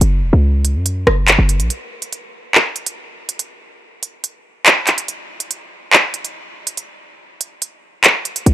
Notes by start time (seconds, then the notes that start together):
0.01 F#1, closed hi-hat
0.22 E1
0.33 C#2
0.65 closed hi-hat
0.75 F#2
0.86 closed hi-hat
1.07 F#1, cross-stick
1.28 clap, closed hi-hat
1.39 F#1
1.49 closed hi-hat
1.60 A#1, closed hi-hat
1.70 closed hi-hat
2.02 closed hi-hat
2.13 closed hi-hat
2.55 clap
2.76 closed hi-hat
2.86 closed hi-hat
3.29 closed hi-hat
3.39 closed hi-hat
4.03 closed hi-hat
4.24 closed hi-hat
4.66 clap, closed hi-hat
4.87 clap, closed hi-hat
4.98 closed hi-hat
5.08 closed hi-hat
5.40 closed hi-hat
5.51 closed hi-hat
5.93 clap
6.14 closed hi-hat
6.25 closed hi-hat
6.67 closed hi-hat
6.77 closed hi-hat
7.41 closed hi-hat
7.62 closed hi-hat
8.04 clap, closed hi-hat
8.25 closed hi-hat
8.36 closed hi-hat
8.46 B1, closed hi-hat